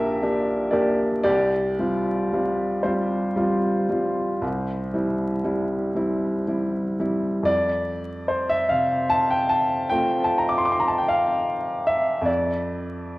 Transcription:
0.00 1.29 A#1 medium
0.00 0.22 A#3 medium
0.00 0.23 D4 medium
0.00 0.23 G4 medium
0.00 0.69 A#4 medium
0.00 0.71 D5 medium
0.00 0.72 E5 medium
0.00 1.29 F5 medium
0.00 1.28 G5 medium
0.00 1.28 A5 medium
0.22 0.69 A#3 soft
0.22 0.69 D4 medium
0.22 0.70 G4 medium
0.71 1.21 A#3 medium
0.71 1.21 D4 soft
0.71 1.21 G4 medium
0.71 1.21 A#4 medium
0.71 1.22 D5 medium
1.24 1.78 C2 medium
1.24 2.79 G4 medium
1.24 2.83 D5 medium
1.79 2.28 G3 soft
1.79 2.28 C4 soft
1.79 2.29 F4 medium
2.33 2.80 G3 medium
2.33 2.80 C4 soft
2.33 2.80 F4 medium
2.83 3.32 G3 medium
2.83 3.32 C4 medium
2.83 3.33 F4 medium
2.83 5.92 G4 medium
2.83 5.96 C5 medium
3.36 3.85 G3 medium
3.36 3.85 C4 medium
3.36 3.85 F4 medium
3.89 4.38 G3 soft
3.89 4.38 C4 soft
3.89 4.38 F4 medium
4.42 4.92 C2 medium
4.94 5.41 G3 soft
4.94 5.41 C4 soft
4.94 5.41 E4 soft
5.44 5.92 G3 soft
5.44 5.92 C4 soft
5.44 5.92 E4 soft
5.95 6.43 G3 soft
5.95 6.44 C4 medium
5.95 6.44 E4 medium
6.48 6.96 G3 soft
6.48 6.96 C4 soft
6.48 6.96 E4 soft
7.00 7.43 G3 medium
7.00 7.43 C4 soft
7.00 7.43 E4 soft
7.43 12.20 F2 medium
7.43 8.29 D5 medium
8.28 8.49 C5 medium
8.50 8.70 E5 medium
8.69 10.61 C3 medium
8.69 9.10 F5 medium
9.10 9.30 A5 loud
9.30 9.51 G5 medium
9.49 9.90 A5 medium
9.90 12.24 A3 medium
9.90 12.24 C4 medium
9.90 12.25 F4 medium
9.90 10.25 G5 medium
10.24 10.38 A5 medium
10.38 10.49 A#5 medium
10.49 10.58 D6 medium
10.58 10.65 C6 medium
10.65 10.73 D6 medium
10.72 10.80 C6 medium
10.80 10.89 A#5 medium
10.88 10.98 A5 medium
10.98 11.09 G5 medium
11.08 11.88 F5 medium
11.87 12.27 E5 medium
12.22 13.19 F2 medium
12.22 13.19 D5 medium

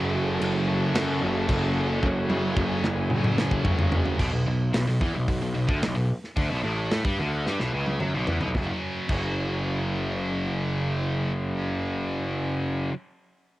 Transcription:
0.00 0.37 F#1 loud
0.00 0.69 F#2 loud
0.00 2.01 F#2 loud
0.00 0.67 C#3 loud
0.00 2.01 C#3 loud
0.00 0.67 F#3 medium
0.00 2.04 F#3 loud
0.00 4.16 F#4 medium
0.00 4.16 A4 medium
0.00 4.16 C#5 medium
0.00 2.02 A5 medium
0.41 0.91 F#1 medium
0.41 crash medium
0.67 1.47 F#2 medium
0.67 1.48 C#3 medium
0.67 1.50 F#3 loud
0.95 1.20 F#2 loud
0.95 snare loud
0.95 crash medium
1.21 1.47 F#1 loud
1.48 1.99 F#1 loud
1.48 2.01 F#2 medium
1.48 2.02 C#3 medium
1.48 2.04 F#3 loud
1.48 kick medium
1.48 crash medium
2.02 2.28 F#1 loud
2.02 2.82 F#2 loud
2.02 4.18 F#2 medium
2.02 4.18 C#3 loud
2.02 2.83 C#3 loud
2.02 2.82 F#3 loud
2.02 4.19 F#3 loud
2.02 4.18 G#5 medium
2.02 kick medium
2.30 2.55 F#1 loud
2.30 high tom medium
2.57 2.82 F#1 loud
2.57 kick loud
2.83 3.09 F#1 loud
2.83 3.64 F#2 medium
2.83 3.64 C#3 medium
2.83 3.63 F#3 medium
2.83 snare medium
3.10 3.61 F#1 medium
3.10 mid tom loud
3.24 mid tom medium
3.38 snare loud
3.51 kick medium
3.65 3.90 F#1 medium
3.65 4.18 F#2 medium
3.65 4.18 C#3 medium
3.65 4.19 F#3 medium
3.65 kick medium
3.65 floor tom loud
3.79 floor tom medium
3.92 4.17 F#1 medium
3.92 floor tom loud
4.05 floor tom medium
4.19 4.32 B1 medium
4.19 4.32 B2 loud
4.19 kick medium
4.19 crash medium
4.33 4.46 B1 medium
4.33 4.45 B2 medium
4.46 4.72 B1 medium
4.46 4.68 B2 medium
4.74 4.86 B1 medium
4.74 4.86 B2 medium
4.74 snare loud
4.74 open hi-hat medium
4.87 5.00 B1 medium
4.87 5.01 B2 medium
4.87 snare soft
5.01 5.14 E2 medium
5.01 5.14 E3 loud
5.01 kick medium
5.14 5.27 B1 medium
5.14 5.27 B2 medium
5.28 5.41 B1 medium
5.28 5.41 B2 medium
5.28 kick medium
5.28 open hi-hat medium
5.42 5.54 B1 medium
5.42 5.54 B2 medium
5.55 5.68 B1 medium
5.55 5.67 B2 medium
5.68 5.81 D2 medium
5.68 5.81 D3 medium
5.68 kick loud
5.82 5.95 B1 medium
5.82 5.94 B2 medium
5.82 snare loud
5.82 open hi-hat medium
5.95 6.09 B1 medium
5.95 6.09 B2 medium
6.24 snare soft
6.36 6.49 D2 medium
6.36 6.49 D3 loud
6.36 kick loud
6.36 open hi-hat soft
6.49 6.63 B1 medium
6.49 6.63 B2 medium
6.63 6.90 A1 medium
6.63 6.90 A2 medium
6.91 7.04 A2 loud
6.91 7.04 A3 medium
6.91 snare medium
6.91 open hi-hat soft
7.05 7.18 G2 medium
7.05 7.18 G3 medium
7.05 kick medium
7.19 7.44 D2 medium
7.19 7.45 D3 loud
7.46 7.59 G2 medium
7.46 7.59 G3 medium
7.46 snare medium
7.60 7.72 B1 medium
7.60 7.72 B2 medium
7.60 snare soft
7.74 7.99 C#2 medium
7.74 8.00 C#3 medium
7.86 high tom medium
8.00 8.13 F#2 medium
8.00 8.13 F#3 medium
8.00 mid tom medium
8.14 8.27 B1 medium
8.14 8.27 B2 medium
8.27 8.40 E2 medium
8.27 8.40 E3 medium
8.27 floor tom medium
8.40 8.54 B1 medium
8.40 8.53 B2 medium
8.40 floor tom medium
8.53 8.70 F#1 medium
8.53 9.07 F#2 medium
8.53 9.10 C#3 medium
8.53 kick medium
8.53 snare medium
8.57 9.11 F#3 loud
9.08 12.87 F#1 medium
9.08 12.90 F#2 medium
9.08 12.93 C#3 medium
9.08 kick medium
9.08 crash medium
9.12 12.94 F#3 medium

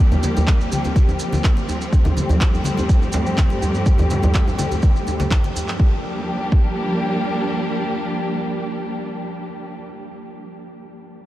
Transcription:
0.00 5.75 F3 medium
0.00 1.88 G3 medium
0.00 1.89 A#3 medium
0.00 5.76 C4 medium
0.00 1.88 G4 medium
0.12 muted conga soft
0.12 high conga medium
0.12 djembe bass medium
0.12 low conga medium
0.12 maracas soft
0.23 djembe slap medium
0.23 djembe tone medium
0.23 high conga medium
0.23 maracas medium
0.37 low conga medium
0.37 djembe bass medium
0.37 maracas soft
0.47 kick loud
0.47 clap loud
0.47 muted conga soft
0.47 djembe tone medium
0.47 maracas soft
0.61 maracas soft
0.72 high conga medium
0.72 maracas medium
0.84 muted conga soft
0.84 djembe tone medium
0.84 maracas soft
0.96 kick loud
0.96 high conga medium
0.96 maracas soft
1.09 djembe tone medium
1.09 maracas soft
1.19 muted conga soft
1.19 maracas loud
1.32 djembe slap medium
1.32 high conga loud
1.32 djembe tone medium
1.32 maracas soft
1.44 kick loud
1.44 clap loud
1.44 maracas soft
1.57 muted conga medium
1.57 maracas soft
1.69 djembe tone medium
1.69 maracas medium
1.81 maracas soft
1.92 5.76 G2 medium
1.92 5.76 G3 medium
1.92 5.76 A3 medium
1.92 5.76 G4 medium
1.92 kick loud
1.92 djembe tone medium
1.92 maracas medium
2.05 muted conga medium
2.05 high conga medium
2.05 low conga loud
2.05 djembe bass medium
2.05 maracas soft
2.17 djembe tone medium
2.17 high conga medium
2.17 maracas medium
2.29 djembe bass medium
2.29 low conga loud
2.29 maracas soft
2.41 kick medium
2.41 clap medium
2.41 muted conga soft
2.41 maracas soft
2.54 djembe tone medium
2.54 maracas soft
2.64 djembe slap medium
2.64 high conga medium
2.64 maracas medium
2.77 muted conga medium
2.77 djembe tone medium
2.77 maracas soft
2.89 kick loud
2.89 maracas soft
3.01 djembe tone medium
3.01 maracas soft
3.12 muted conga soft
3.12 djembe slap loud
3.12 low conga medium
3.12 maracas medium
3.26 maracas soft
3.38 kick medium
3.38 clap loud
3.38 high conga medium
3.38 djembe tone medium
3.38 maracas soft
3.50 muted conga medium
3.50 maracas soft
3.62 djembe tone medium
3.62 maracas medium
3.74 maracas soft
3.86 kick loud
3.86 djembe tone medium
3.86 maracas soft
3.98 muted conga soft
3.98 high conga medium
3.98 low conga medium
3.98 djembe bass medium
3.98 maracas soft
4.10 djembe slap medium
4.10 high conga medium
4.10 maracas medium
4.22 djembe tone medium
4.22 djembe bass medium
4.22 low conga loud
4.22 maracas soft
4.34 kick loud
4.34 clap medium
4.34 muted conga soft
4.34 low conga medium
4.34 maracas soft
4.47 djembe tone medium
4.47 maracas soft
4.59 djembe slap medium
4.59 high conga medium
4.59 maracas medium
4.71 muted conga soft
4.71 djembe tone medium
4.71 maracas soft
4.82 kick loud
4.82 high conga medium
4.82 maracas soft
4.96 maracas soft
5.07 muted conga soft
5.07 djembe tone medium
5.07 maracas medium
5.20 djembe slap medium
5.20 high conga loud
5.20 maracas soft
5.30 kick loud
5.30 clap medium
5.30 djembe tone medium
5.30 maracas soft
5.44 muted conga medium
5.44 maracas soft
5.56 djembe tone medium
5.56 maracas medium
5.68 clap medium
5.68 maracas soft
5.79 9.80 F3 medium
5.79 9.80 G3 medium
5.79 9.80 A#3 medium
5.79 9.80 D4 medium
5.79 9.80 G4 medium
5.79 kick loud
6.52 kick loud

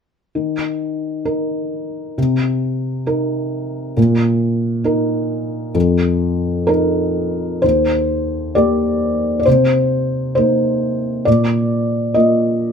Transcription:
0.35 2.14 D#3 soft
1.25 2.13 D#4 soft
1.25 2.13 A#4 soft
2.18 3.94 C3 soft
3.06 3.93 D#4 soft
3.06 3.93 A#4 soft
3.97 5.71 A#2 soft
4.84 5.71 D#4 soft
4.84 5.71 A#4 soft
5.75 7.59 F2 medium
6.68 7.60 D#4 soft
6.68 7.60 A#4 soft
7.62 9.42 D#2 soft
7.62 8.55 C5 medium
8.55 9.43 A#3 soft
8.55 9.43 G4 soft
8.55 9.38 D5 medium
9.39 9.46 D5 soft
9.46 11.23 C3 soft
9.46 10.34 C5 medium
10.35 11.23 A#3 soft
10.35 11.23 D#4 soft
10.35 11.26 C5 medium
11.25 12.72 A#2 soft
11.25 12.15 D5 medium
12.14 12.72 A#3 soft
12.14 12.72 F4 soft
12.14 12.72 D#5 medium

